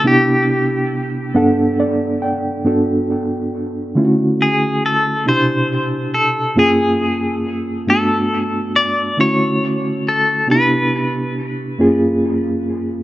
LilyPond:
<<
  \new Staff \with { instrumentName = "Clean electric guitar" } { \time 6/8 \key g \major \tempo 4. = 46 g'2~ g'8 r8 | r2 aes'8 a'8 | c''4 a'8 gis'4 r8 | a'4 d''8 cis''4 a'8 |
b'4 r2 | }
  \new Staff \with { instrumentName = "Reed electric piano" } { \time 6/8 \key g \major << { r2 d''8 g''8 | r2. | r2. | r2. |
r2. | } \\ { <c b d' e' g'>4. <g, b d' a' fis''>4. | <g, b d' fis' a'>4. <d a cis' e' f' fis'>4. | <b, c d' e' g'>4. <fis, ais cis' eis' gis'>4. | <g, a b d' fis'>4. <d a cis' e' fis'>4. |
<c b d' ees' e' g'>4. <fis, ais cis' eis' gis'>4. | } >> }
>>